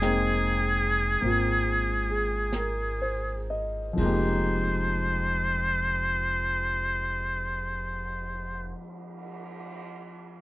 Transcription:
Already playing: F1 G#4
0.01 G#3 A#3 C4 D#4 G5, brush sweep, snare, hi-hat pedal
1.21 G#1 A#3 C4, brush sweep
1.25 F4
2.10 G#4
2.53 A#4, brush sweep, snare, hi-hat pedal
3.02 C5
3.50 D#5
3.93 F2 F3
3.97 F1 G#3 A#3 C5, kick, ride
4.03 D#4 G4
5.02 cymbal swell

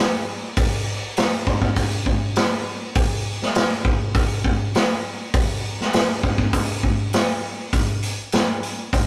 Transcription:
0.57 kick, open hi-hat
1.17 snare, open hi-hat
1.47 kick
1.62 kick
1.76 kick, open hi-hat
2.06 kick
2.36 snare, open hi-hat
2.95 kick, open hi-hat
3.42 snare
3.55 snare, open hi-hat
3.85 kick
4.15 kick, open hi-hat
4.44 kick
4.74 snare, open hi-hat
5.34 kick, open hi-hat
5.80 snare
5.93 snare, open hi-hat
6.23 kick
6.38 kick
6.53 kick, open hi-hat
6.83 kick
7.13 snare, open hi-hat
7.73 kick, open hi-hat
8.03 open hi-hat
8.32 snare, open hi-hat
8.63 open hi-hat
8.93 kick, open hi-hat

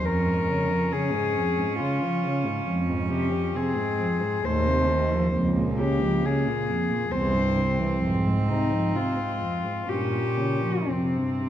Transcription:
0.03 F2 C#4 A#4
0.26 G#2
0.48 C#3
0.70 F3
0.92 C#3 G#4
1.13 G#2
1.35 F2
1.58 G#2
1.80 C#3 F4
2.03 F3
2.25 C#3
2.46 G#2
2.67 F2
2.89 G#2
3.11 C3 G4
3.33 F3
3.55 C3 C4 G#4
3.77 G#2
3.99 F2
4.21 G#2
4.44 D#2 A2 A3 C5
4.67 C3
4.88 D#3
5.11 F3
5.34 C#2 F2 A#3
5.56 A#2
5.79 C#3 G4
6.01 F3
6.23 C#3 G#4
6.46 A#2
6.68 F2
6.90 A#2
7.11 C2 E2 C4 C5
7.33 G2
7.56 C3
7.79 E3
8.02 F2 G#2
8.26 G#2
8.48 C3 D#4
8.72 F3
8.94 C3 F4
9.17 G#2
9.41 F2
9.64 G#2
9.89 G2 A#2 C#4 G4
10.13 A#2
10.37 C#3
10.62 F3
10.87 F2 C3 C4
11.14 G2
11.40 C3

